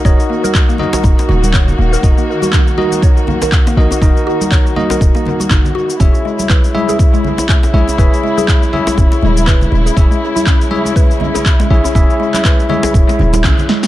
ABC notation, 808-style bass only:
X:1
M:4/4
L:1/8
Q:"Swing 16ths" 1/4=121
K:Dbdor
V:1 name="808-style bass" clef=bass
E,,, z3 E,,, E,,,2 E,,, | E,,, z6 B,,, | E,,, z3 E,,, z G,,, z | E,,, z6 B,,, |
E,,, z3 E,,, E,,,2 E,,, | E,,, z6 B,,, | E,,, z3 E,,, E,,, B,,, z |]